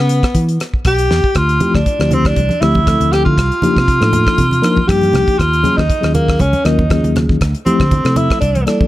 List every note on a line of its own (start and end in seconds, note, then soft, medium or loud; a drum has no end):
0.00 0.20 C#3 medium
0.00 0.56 B3 medium
0.09 closed hi-hat medium
0.23 kick medium
0.23 cross-stick medium
0.23 closed hi-hat soft
0.35 0.57 E3 loud
0.35 kick medium
0.35 closed hi-hat medium
0.49 closed hi-hat soft
0.60 cross-stick medium
0.60 closed hi-hat medium
0.74 muted fingered electric bass stroke soft
0.74 kick medium
0.85 1.08 B1 medium
0.85 1.39 G4 medium
0.85 kick loud
0.85 cross-stick medium
0.85 closed hi-hat medium
0.99 closed hi-hat soft
1.11 1.23 E2 medium
1.11 snare medium
1.24 kick medium
1.35 1.58 D2 medium
1.35 1.77 F4 medium
1.35 kick medium
1.35 cross-stick medium
1.35 closed hi-hat medium
1.49 closed hi-hat soft
1.60 1.77 F3 medium
1.60 1.77 A3 medium
1.60 1.77 C4 medium
1.60 1.77 E4 medium
1.60 1.77 G4 loud
1.60 closed hi-hat medium
1.60 high conga medium
1.60 low conga medium
1.75 1.85 D2 medium
1.75 2.15 D4 medium
1.75 kick medium
1.75 cross-stick medium
1.86 1.93 E4 soft
1.86 1.93 G4 soft
1.86 kick loud
1.86 closed hi-hat medium
1.99 2.32 D2 medium
1.99 2.38 F3 medium
1.99 2.38 A3 medium
1.99 2.38 C4 medium
1.99 2.38 E4 medium
1.99 2.38 G4 medium
1.99 cross-stick medium
1.99 closed hi-hat soft
2.11 2.28 C4 medium
2.11 closed hi-hat medium
2.11 low conga medium
2.25 2.63 D4 medium
2.25 kick medium
2.25 cross-stick medium
2.25 closed hi-hat soft
2.36 2.49 C2 medium
2.36 kick medium
2.36 closed hi-hat medium
2.36 high conga medium
2.49 muted fingered electric bass stroke soft
2.49 closed hi-hat soft
2.49 high conga medium
2.61 2.96 D2 medium
2.61 2.78 F3 medium
2.61 2.78 A3 medium
2.61 2.78 C4 medium
2.61 3.14 E4 medium
2.61 2.78 E4 medium
2.61 2.78 G4 medium
2.61 cross-stick medium
2.61 closed hi-hat soft
2.75 kick medium
2.75 high conga medium
2.86 3.35 F3 medium
2.86 3.35 A3 medium
2.86 3.35 C4 medium
2.86 3.35 E4 medium
2.86 3.35 A4 medium
2.86 kick loud
2.86 cross-stick medium
2.86 closed hi-hat medium
3.01 3.23 D2 medium
3.01 closed hi-hat soft
3.01 high conga medium
3.12 3.24 G4 medium
3.12 cross-stick medium
3.12 closed hi-hat medium
3.25 3.36 D3 medium
3.25 4.89 F4 medium
3.25 kick medium
3.38 3.50 C2 medium
3.38 kick medium
3.38 cross-stick medium
3.38 closed hi-hat medium
3.52 closed hi-hat soft
3.62 3.79 F3 medium
3.62 3.79 A#3 medium
3.62 3.79 D4 medium
3.62 3.79 D#4 medium
3.62 3.79 G4 loud
3.62 muted fingered electric bass stroke soft
3.62 closed hi-hat medium
3.62 high conga medium
3.62 low conga medium
3.77 3.99 C3 medium
3.77 kick medium
3.77 cross-stick medium
3.77 closed hi-hat soft
3.88 3.94 D#4 soft
3.88 3.94 G4 soft
3.88 kick loud
3.88 closed hi-hat medium
4.00 4.24 A2 medium
4.00 4.40 F3 medium
4.00 4.40 A#3 medium
4.00 4.40 D4 medium
4.00 4.40 D#4 medium
4.00 4.40 A4 medium
4.00 cross-stick medium
4.00 closed hi-hat soft
4.13 closed hi-hat medium
4.13 low conga medium
4.27 kick medium
4.27 cross-stick medium
4.27 closed hi-hat soft
4.38 4.61 C3 medium
4.38 kick medium
4.38 closed hi-hat medium
4.38 high conga medium
4.51 closed hi-hat soft
4.51 high conga medium
4.62 4.80 F3 loud
4.62 4.79 A#3 medium
4.62 4.80 D4 medium
4.62 4.80 D#4 medium
4.62 4.80 A#4 loud
4.62 cross-stick medium
4.62 closed hi-hat medium
4.76 muted fingered electric bass stroke soft
4.76 kick medium
4.76 high conga medium
4.87 5.12 G2 medium
4.87 5.36 F3 medium
4.87 5.36 A#3 medium
4.87 5.36 D4 medium
4.87 5.36 D#4 medium
4.87 5.36 G4 medium
4.87 5.40 G4 medium
4.87 kick loud
4.87 cross-stick medium
4.87 closed hi-hat medium
5.02 closed hi-hat soft
5.02 high conga medium
5.13 5.26 C2 medium
5.13 cross-stick medium
5.13 closed hi-hat medium
5.13 low conga medium
5.28 kick medium
5.28 closed hi-hat soft
5.38 5.62 D#2 loud
5.38 5.79 F4 medium
5.38 kick medium
5.38 cross-stick medium
5.38 closed hi-hat medium
5.53 closed hi-hat soft
5.63 5.81 F#3 loud
5.63 5.81 A#3 medium
5.63 5.81 C#4 medium
5.63 5.81 F4 medium
5.63 5.81 G#4 loud
5.63 closed hi-hat medium
5.63 high conga medium
5.63 low conga medium
5.77 5.88 D#2 medium
5.77 6.14 D#4 medium
5.77 kick medium
5.77 cross-stick medium
5.90 kick loud
5.90 closed hi-hat medium
6.01 6.36 D#2 medium
6.01 6.41 F#3 medium
6.01 6.41 A#3 medium
6.01 6.41 C#4 medium
6.01 6.41 F4 medium
6.01 6.41 G#4 medium
6.01 cross-stick medium
6.01 closed hi-hat soft
6.14 6.42 A#3 medium
6.14 closed hi-hat medium
6.14 low conga medium
6.28 kick medium
6.28 cross-stick medium
6.28 closed hi-hat soft
6.39 6.52 C#2 medium
6.39 6.66 C#4 medium
6.39 kick medium
6.39 closed hi-hat medium
6.39 high conga medium
6.53 muted fingered electric bass stroke soft
6.53 closed hi-hat soft
6.53 high conga medium
6.64 7.00 D#2 medium
6.64 6.82 F#3 medium
6.64 6.81 A#3 medium
6.64 6.82 C#4 medium
6.64 7.15 D#4 medium
6.64 6.82 F4 medium
6.64 6.82 A#4 loud
6.64 cross-stick medium
6.64 closed hi-hat medium
6.79 kick medium
6.79 high conga medium
6.90 7.38 F#3 medium
6.90 7.38 A#3 medium
6.90 7.38 C#4 medium
6.90 7.38 F4 medium
6.90 7.38 G#4 medium
6.90 kick medium
6.90 cross-stick medium
6.90 closed hi-hat medium
7.03 7.26 D#2 medium
7.03 closed hi-hat soft
7.03 high conga medium
7.16 cross-stick medium
7.16 closed hi-hat soft
7.16 low conga medium
7.29 7.40 D#2 medium
7.29 kick medium
7.41 7.53 D2 loud
7.41 kick medium
7.41 cross-stick medium
7.41 closed hi-hat medium
7.55 closed hi-hat soft
7.66 7.83 F3 medium
7.66 7.83 A3 medium
7.66 8.18 C4 medium
7.66 7.83 C4 medium
7.66 7.83 E4 medium
7.66 7.83 G4 loud
7.66 muted fingered electric bass stroke soft
7.66 closed hi-hat medium
7.66 high conga medium
7.80 8.03 D3 medium
7.80 kick medium
7.80 cross-stick medium
7.80 closed hi-hat soft
7.91 7.98 E4 soft
7.91 7.98 G4 soft
7.91 kick loud
7.91 closed hi-hat medium
7.91 low conga medium
8.04 8.27 C3 medium
8.04 8.41 F3 medium
8.04 8.41 A3 medium
8.04 8.41 C4 medium
8.04 8.41 E4 medium
8.04 8.41 A4 medium
8.04 cross-stick medium
8.04 closed hi-hat soft
8.16 8.40 E4 loud
8.16 closed hi-hat medium
8.16 low conga medium
8.30 kick medium
8.30 cross-stick medium
8.30 closed hi-hat soft
8.41 8.64 C2 loud
8.41 8.65 D4 medium
8.41 kick medium
8.41 closed hi-hat medium
8.55 closed hi-hat soft
8.55 high conga medium
8.66 8.84 G3 medium
8.66 8.83 A#3 medium
8.66 8.88 D4 medium
8.66 8.83 D4 medium
8.66 8.84 E4 medium
8.66 8.84 A4 medium
8.66 cross-stick medium
8.66 closed hi-hat medium
8.81 muted fingered electric bass stroke soft
8.81 kick medium
8.81 high conga medium